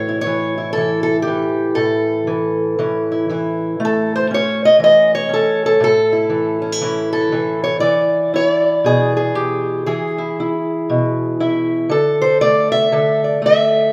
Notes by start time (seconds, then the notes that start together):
Already playing: A2 E3 C#5
0.09 E4
0.21 C#5
0.26 E3
0.58 E4
0.73 A4
0.77 E3
1.03 A4
1.22 G4
1.27 E3
1.75 A2 A4
2.27 E3
2.79 E3 C#4
3.12 E4
3.29 E3 E4
3.80 A3
3.85 A4
4.16 C5
4.31 C#4 C#5
4.65 D#5
4.79 E3
4.84 D#5
5.15 C#5
5.29 C#4
5.34 A4
5.66 A4
5.80 A2 A4
6.12 E4
6.29 E3
6.62 C#4
6.72 E4
6.81 E3 C#4
7.13 A4
7.32 E3
7.64 C#5
7.80 E3 D5
8.34 E4 C#5
8.50 D5
8.84 B2 G#4
9.17 G#4
9.35 G4
9.86 E3 G#4
10.18 E4
10.40 E4
10.90 B2
11.40 E4 E5
11.89 D3 A4
12.22 C5
12.41 A3 D5
12.72 E5
12.92 D3 A4
13.24 D5
13.42 A3
13.46 E5